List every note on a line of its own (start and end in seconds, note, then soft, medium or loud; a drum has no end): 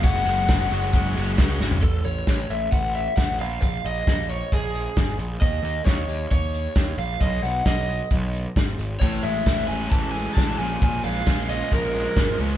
0.03 0.24 F#1 loud
0.03 0.47 F#3 medium
0.03 0.26 G#3 medium
0.03 0.25 C#4 medium
0.03 0.24 F#4 loud
0.03 1.34 F#5 loud
0.03 kick loud
0.03 closed hi-hat loud
0.25 0.46 F#1 medium
0.25 0.48 G#3 medium
0.25 0.48 C#4 medium
0.25 0.49 F#4 medium
0.25 closed hi-hat medium
0.48 0.69 F#1 medium
0.48 0.72 F#3 medium
0.48 0.71 G#3 medium
0.48 0.71 C#4 medium
0.48 0.70 F#4 medium
0.48 kick loud
0.48 snare loud
0.48 closed hi-hat medium
0.60 closed hi-hat soft
0.71 0.91 F#1 medium
0.71 0.93 F#3 medium
0.71 0.94 G#3 medium
0.71 0.94 C#4 medium
0.71 0.95 F#4 medium
0.71 closed hi-hat medium
0.82 closed hi-hat soft
0.93 1.14 F#1 loud
0.93 1.37 F#3 medium
0.93 1.18 G#3 medium
0.93 1.17 C#4 medium
0.93 1.15 F#4 medium
0.93 kick loud
0.93 closed hi-hat medium
1.16 1.37 F#1 loud
1.16 1.38 G#3 medium
1.16 1.39 C#4 medium
1.16 1.40 F#4 medium
1.16 closed hi-hat medium
1.27 closed hi-hat soft
1.38 1.58 C#2 medium
1.38 1.81 F#3 medium
1.38 1.61 G#3 medium
1.38 1.60 C#4 medium
1.38 1.59 F#4 loud
1.38 kick loud
1.38 snare loud
1.38 closed hi-hat loud
1.60 1.81 G#1 medium
1.60 1.82 G#3 medium
1.60 1.82 C#4 medium
1.60 1.81 F#4 medium
1.60 snare medium
1.71 floor tom medium
1.82 2.00 A1 medium
1.82 2.03 A4 medium
1.82 kick loud
1.82 closed hi-hat medium
2.04 2.22 A1 medium
2.04 2.51 C#5 medium
2.04 closed hi-hat medium
2.27 2.45 A1 medium
2.27 kick loud
2.27 snare medium
2.27 closed hi-hat medium
2.50 2.67 A1 medium
2.50 2.71 E5 medium
2.50 closed hi-hat medium
2.72 3.07 A1 medium
2.72 2.95 F#5 medium
2.72 kick loud
2.72 closed hi-hat medium
2.95 3.16 E5 medium
2.95 closed hi-hat medium
3.17 3.41 A1 medium
3.17 3.39 F#5 medium
3.17 kick loud
3.17 snare medium
3.17 closed hi-hat medium
3.40 3.57 A#1 medium
3.40 3.61 F5 medium
3.40 closed hi-hat medium
3.62 3.79 A#1 medium
3.62 3.85 F5 loud
3.62 kick medium
3.62 closed hi-hat medium
3.85 4.02 A#1 medium
3.85 4.27 D#5 loud
3.85 closed hi-hat medium
4.07 4.41 A#1 medium
4.07 kick loud
4.07 snare loud
4.07 closed hi-hat medium
4.30 4.53 C#5 medium
4.30 closed hi-hat medium
4.52 4.87 A#1 medium
4.52 5.16 G#4 medium
4.52 kick medium
4.52 closed hi-hat medium
4.74 closed hi-hat medium
4.97 5.14 G#1 medium
4.97 kick loud
4.97 snare loud
4.97 closed hi-hat medium
5.19 5.36 A#1 medium
5.19 closed hi-hat medium
5.41 5.59 D#2 medium
5.41 5.83 D#5 medium
5.41 kick loud
5.41 closed hi-hat medium
5.63 5.80 D#2 medium
5.63 closed hi-hat medium
5.85 6.04 D#2 medium
5.85 6.30 C#5 medium
5.85 kick loud
5.85 snare loud
5.85 closed hi-hat loud
6.07 6.25 D#2 medium
6.07 closed hi-hat medium
6.31 6.66 D#2 medium
6.31 6.95 C#5 medium
6.31 kick loud
6.31 closed hi-hat medium
6.54 closed hi-hat medium
6.75 6.93 D#2 medium
6.75 kick loud
6.75 snare loud
6.75 closed hi-hat medium
6.98 7.15 A#1 medium
6.98 7.20 F5 loud
6.98 closed hi-hat medium
7.21 7.39 B1 medium
7.21 7.43 D#5 medium
7.21 kick loud
7.21 closed hi-hat medium
7.42 7.60 B1 medium
7.42 7.66 F#5 loud
7.42 closed hi-hat medium
7.65 8.00 B1 medium
7.65 8.08 D#5 medium
7.65 kick medium
7.65 snare loud
7.65 closed hi-hat medium
7.89 closed hi-hat medium
8.11 8.46 B1 medium
8.11 kick loud
8.11 closed hi-hat medium
8.34 closed hi-hat medium
8.56 8.74 G#1 medium
8.56 kick loud
8.56 snare loud
8.56 closed hi-hat medium
8.78 8.96 G#1 medium
8.78 closed hi-hat medium
9.00 9.18 A1 medium
9.00 10.14 A2 medium
9.00 9.24 C#5 medium
9.00 kick loud
9.00 closed hi-hat medium
9.23 9.41 A1 medium
9.23 10.13 G#3 medium
9.23 9.67 E5 medium
9.23 closed hi-hat medium
9.46 9.63 A1 medium
9.46 10.59 E4 medium
9.46 kick loud
9.46 snare loud
9.46 closed hi-hat medium
9.68 9.87 A1 medium
9.68 11.49 C#4 medium
9.68 9.89 G#5 loud
9.68 closed hi-hat medium
9.90 10.26 A1 medium
9.90 10.36 E3 medium
9.90 10.11 A5 loud
9.90 kick loud
9.90 closed hi-hat medium
10.11 10.59 G#3 medium
10.11 10.33 G#5 medium
10.11 closed hi-hat medium
10.34 10.54 A1 medium
10.34 10.59 E3 medium
10.34 10.57 A5 medium
10.34 kick loud
10.34 snare loud
10.34 closed hi-hat medium
10.58 10.76 A#1 medium
10.58 10.81 A#2 medium
10.58 10.82 G#5 medium
10.58 closed hi-hat medium
10.82 10.99 A#1 medium
10.82 11.94 A#2 medium
10.82 11.03 G#5 loud
10.82 kick loud
10.82 closed hi-hat medium
11.04 11.21 A#1 medium
11.04 11.93 G#3 medium
11.04 11.49 F5 loud
11.04 closed hi-hat medium
11.26 11.61 A#1 medium
11.26 12.39 F4 medium
11.26 kick loud
11.26 snare loud
11.26 closed hi-hat medium
11.49 12.39 C#4 medium
11.49 11.72 D#5 medium
11.49 closed hi-hat medium
11.72 12.06 A#1 medium
11.72 12.17 F3 medium
11.72 12.35 A#4 medium
11.72 kick medium
11.72 closed hi-hat medium
11.94 12.57 G#3 medium
11.94 closed hi-hat medium
12.16 12.34 G#1 medium
12.16 12.57 F3 medium
12.16 kick loud
12.16 snare loud
12.16 closed hi-hat medium
12.39 12.56 C#2 medium
12.39 12.57 C#4 medium
12.39 closed hi-hat medium